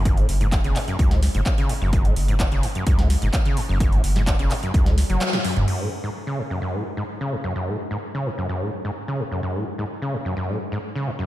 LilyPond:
<<
  \new Staff \with { instrumentName = "Acid bass" } { \clef bass \time 4/4 \key fis \minor \tempo 4 = 128 fis,16 a,16 r16 gis,16 r16 cis16 fis,16 fis,16 fis,16 a,16 r16 gis,16 r16 cis16 fis,16 fis,16 | fis,16 a,16 r16 gis,16 r16 cis16 fis,16 fis,16 fis,16 a,16 r16 gis,16 r16 cis16 fis,16 fis,16 | fis,16 a,16 r16 gis,16 r16 cis16 fis,16 fis,16 fis,16 a,16 r16 fis8 fis,16 fis,16 fis,16 | fis,16 a,16 r16 gis,16 r16 cis16 fis,16 fis,16 fis,16 a,16 r16 gis,16 r16 cis16 fis,16 fis,16 |
fis,16 a,16 r16 gis,16 r16 cis16 fis,16 fis,16 fis,16 a,16 r16 gis,16 r16 cis16 fis,16 fis,16 | fis,16 a,16 r16 gis,16 r16 cis16 fis,16 fis,16 fis,16 a,16 r16 gis,16 r16 cis16 fis,16 fis,16 | }
  \new Staff \with { instrumentName = "Sub bass" } { \clef bass \time 4/4 \key fis \minor fis,,8 fis,,8. fis,,16 r8 cis,8. fis,,16 r8. fis,,16~ | fis,,8 fis,,8. fis,,16 r8 cis,8. fis,,16 r8. fis,,16~ | fis,,8 fis,,8. fis,,16 r8 cis,8. fis,,16 r8. fis,,16 | r1 |
r1 | r1 | }
  \new DrumStaff \with { instrumentName = "Drums" } \drummode { \time 4/4 <hh bd>16 hh16 hho16 hh16 <hc hh bd>16 hh16 <hc hho>16 hh16 <hh bd>16 <hh sn>16 <hho sn>16 hh16 <hc hh bd>16 hh16 hho8 | <hh bd>16 hh16 hho16 hh16 <hc hh bd>16 hh16 hho16 hh16 <hh bd>16 <hh sn>16 <hho sn>16 hh16 <hc hh bd>16 hh16 hho8 | <hh bd>16 hh16 hho16 <hh sn>16 <hc hh bd>16 hh16 <hc hho>16 hh16 <hh bd>16 <hh sn>16 <hho sn>16 hh16 <hc hh sn>16 <hh sn>16 hho16 <hh toml>16 | cymc4 r4 r4 r4 |
r4 r4 r4 r4 | r4 r4 r4 r4 | }
>>